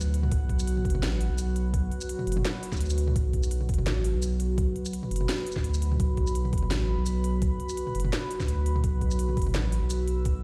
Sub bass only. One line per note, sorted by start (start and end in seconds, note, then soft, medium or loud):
0.00 0.30 D2 medium
0.32 0.86 B1 loud
0.85 1.04 F#1 loud
1.03 1.29 A1 loud
1.30 1.90 B1 medium
2.27 2.43 F#1 loud
2.80 3.14 D2 medium
3.16 3.71 B1 medium
3.69 3.88 F#1 loud
3.86 4.13 A1 loud
4.14 4.74 B1 loud
5.11 5.27 F#1 medium
5.64 5.98 D2 medium
6.00 6.55 B1 loud
6.53 6.72 F#1 loud
6.70 6.97 A1 loud
6.98 7.58 B1 loud
7.95 8.11 F#1 loud
8.48 8.83 D2 medium
8.84 9.38 B1 loud
9.37 9.56 F#1 loud
9.54 9.81 A1 loud
9.82 10.42 B1 medium